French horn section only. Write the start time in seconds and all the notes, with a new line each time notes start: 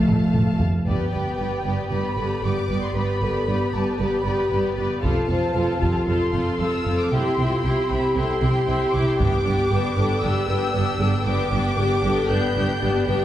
Already playing: A3
0.85 B4
1.91 G4
2.17 A4
2.42 G4
2.94 B4
3.23 A4
3.47 B4
4.00 G4
4.27 G4
5.03 A4
5.29 C5
5.55 F4
5.80 G4
6.05 A4
6.60 A4
7.15 G4
7.39 F4
7.65 G4
8.17 A4
8.42 G4
9.71 B4
9.98 A4
10.25 G4
10.48 B4
10.75 G4
11.01 A4
11.28 B4
11.79 G4
12.04 A4
12.29 B4
12.82 G4
13.07 B4